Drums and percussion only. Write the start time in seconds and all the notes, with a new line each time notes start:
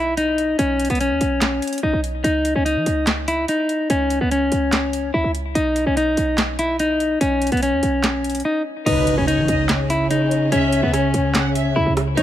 0.17 closed hi-hat
0.38 closed hi-hat
0.59 closed hi-hat
0.80 closed hi-hat
0.85 closed hi-hat
0.90 closed hi-hat
0.95 closed hi-hat
1.01 closed hi-hat
1.21 closed hi-hat
1.41 snare, clap, closed hi-hat
1.62 closed hi-hat
1.68 closed hi-hat
1.73 closed hi-hat
1.78 closed hi-hat
2.04 closed hi-hat
2.24 closed hi-hat
2.45 closed hi-hat
2.66 closed hi-hat
2.86 closed hi-hat
3.07 snare, clap, closed hi-hat
3.28 closed hi-hat
3.48 closed hi-hat
3.69 closed hi-hat
3.90 closed hi-hat
4.10 closed hi-hat
4.31 closed hi-hat
4.52 closed hi-hat
4.72 snare, clap, closed hi-hat
4.93 closed hi-hat
5.35 closed hi-hat
5.55 closed hi-hat
5.76 closed hi-hat
5.97 closed hi-hat
6.17 closed hi-hat
6.38 snare, clap, closed hi-hat
6.59 closed hi-hat
6.79 closed hi-hat
7.00 closed hi-hat
7.21 closed hi-hat
7.42 closed hi-hat
7.47 closed hi-hat
7.52 closed hi-hat
7.57 closed hi-hat
7.63 closed hi-hat
7.83 closed hi-hat
8.04 snare, clap, closed hi-hat
8.24 closed hi-hat
8.30 closed hi-hat
8.35 closed hi-hat
8.40 closed hi-hat
8.86 closed hi-hat, crash
9.07 closed hi-hat
9.28 closed hi-hat
9.48 closed hi-hat
9.69 snare, clap, closed hi-hat
9.90 closed hi-hat
10.11 closed hi-hat
10.31 closed hi-hat
10.52 closed hi-hat
10.73 closed hi-hat
10.93 cross-stick, closed hi-hat
11.14 closed hi-hat
11.35 snare, clap, closed hi-hat
11.55 closed hi-hat
11.97 cross-stick, closed hi-hat
12.17 closed hi-hat